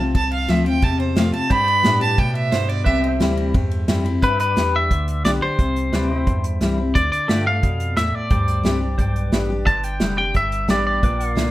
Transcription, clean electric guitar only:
0, 0, Header, 1, 2, 480
1, 0, Start_track
1, 0, Tempo, 339943
1, 215, Time_signature, 4, 2, 24, 8
1, 16251, End_track
2, 0, Start_track
2, 0, Title_t, "Clean electric guitar"
2, 0, Program_c, 0, 27
2, 5980, Note_on_c, 0, 71, 95
2, 6201, Note_off_c, 0, 71, 0
2, 6218, Note_on_c, 0, 71, 85
2, 6709, Note_off_c, 0, 71, 0
2, 6719, Note_on_c, 0, 76, 112
2, 7375, Note_off_c, 0, 76, 0
2, 7414, Note_on_c, 0, 74, 93
2, 7485, Note_off_c, 0, 74, 0
2, 7658, Note_on_c, 0, 72, 89
2, 9095, Note_off_c, 0, 72, 0
2, 9816, Note_on_c, 0, 74, 104
2, 10036, Note_off_c, 0, 74, 0
2, 10053, Note_on_c, 0, 74, 90
2, 10541, Note_off_c, 0, 74, 0
2, 10547, Note_on_c, 0, 77, 106
2, 11209, Note_off_c, 0, 77, 0
2, 11256, Note_on_c, 0, 76, 92
2, 11507, Note_off_c, 0, 76, 0
2, 11507, Note_on_c, 0, 74, 80
2, 12940, Note_off_c, 0, 74, 0
2, 13648, Note_on_c, 0, 81, 112
2, 13894, Note_off_c, 0, 81, 0
2, 13894, Note_on_c, 0, 79, 95
2, 14358, Note_off_c, 0, 79, 0
2, 14375, Note_on_c, 0, 79, 97
2, 14597, Note_off_c, 0, 79, 0
2, 14635, Note_on_c, 0, 76, 98
2, 15071, Note_off_c, 0, 76, 0
2, 15115, Note_on_c, 0, 74, 89
2, 15327, Note_off_c, 0, 74, 0
2, 15344, Note_on_c, 0, 74, 77
2, 16242, Note_off_c, 0, 74, 0
2, 16251, End_track
0, 0, End_of_file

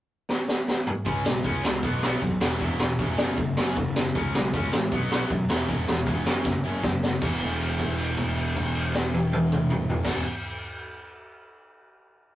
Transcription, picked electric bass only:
0, 0, Header, 1, 2, 480
1, 0, Start_track
1, 0, Key_signature, 4, "major"
1, 0, Tempo, 385604
1, 1321, Time_signature, 4, 2, 24, 8
1, 7081, Tempo, 382166
1, 15448, End_track
2, 0, Start_track
2, 0, Title_t, "Picked electric bass"
2, 0, Program_c, 0, 34
2, 1324, Note_on_c, 0, 37, 103
2, 1513, Note_off_c, 0, 37, 0
2, 1565, Note_on_c, 0, 35, 84
2, 1753, Note_off_c, 0, 35, 0
2, 1799, Note_on_c, 0, 37, 89
2, 1990, Note_off_c, 0, 37, 0
2, 2044, Note_on_c, 0, 37, 94
2, 2233, Note_off_c, 0, 37, 0
2, 2280, Note_on_c, 0, 35, 97
2, 2661, Note_off_c, 0, 35, 0
2, 2762, Note_on_c, 0, 35, 97
2, 2952, Note_off_c, 0, 35, 0
2, 2999, Note_on_c, 0, 28, 91
2, 3191, Note_off_c, 0, 28, 0
2, 3241, Note_on_c, 0, 28, 105
2, 3432, Note_off_c, 0, 28, 0
2, 3484, Note_on_c, 0, 28, 89
2, 3674, Note_off_c, 0, 28, 0
2, 3728, Note_on_c, 0, 28, 89
2, 3917, Note_off_c, 0, 28, 0
2, 3964, Note_on_c, 0, 30, 94
2, 4154, Note_off_c, 0, 30, 0
2, 4203, Note_on_c, 0, 30, 95
2, 4394, Note_off_c, 0, 30, 0
2, 4449, Note_on_c, 0, 30, 91
2, 4637, Note_off_c, 0, 30, 0
2, 4687, Note_on_c, 0, 30, 102
2, 5065, Note_off_c, 0, 30, 0
2, 5175, Note_on_c, 0, 37, 98
2, 5361, Note_off_c, 0, 37, 0
2, 5426, Note_on_c, 0, 35, 86
2, 5607, Note_off_c, 0, 35, 0
2, 5650, Note_on_c, 0, 37, 83
2, 5837, Note_off_c, 0, 37, 0
2, 5895, Note_on_c, 0, 33, 91
2, 6080, Note_off_c, 0, 33, 0
2, 6125, Note_on_c, 0, 35, 91
2, 6503, Note_off_c, 0, 35, 0
2, 6601, Note_on_c, 0, 42, 97
2, 6791, Note_off_c, 0, 42, 0
2, 6836, Note_on_c, 0, 28, 83
2, 7027, Note_off_c, 0, 28, 0
2, 7082, Note_on_c, 0, 28, 105
2, 7272, Note_off_c, 0, 28, 0
2, 7320, Note_on_c, 0, 28, 85
2, 7511, Note_off_c, 0, 28, 0
2, 7557, Note_on_c, 0, 28, 90
2, 7750, Note_off_c, 0, 28, 0
2, 7801, Note_on_c, 0, 30, 96
2, 7992, Note_off_c, 0, 30, 0
2, 8041, Note_on_c, 0, 30, 98
2, 8233, Note_off_c, 0, 30, 0
2, 8285, Note_on_c, 0, 30, 86
2, 8475, Note_off_c, 0, 30, 0
2, 8524, Note_on_c, 0, 30, 97
2, 8905, Note_off_c, 0, 30, 0
2, 9001, Note_on_c, 0, 28, 92
2, 12446, Note_off_c, 0, 28, 0
2, 12559, Note_on_c, 0, 28, 92
2, 12759, Note_off_c, 0, 28, 0
2, 15448, End_track
0, 0, End_of_file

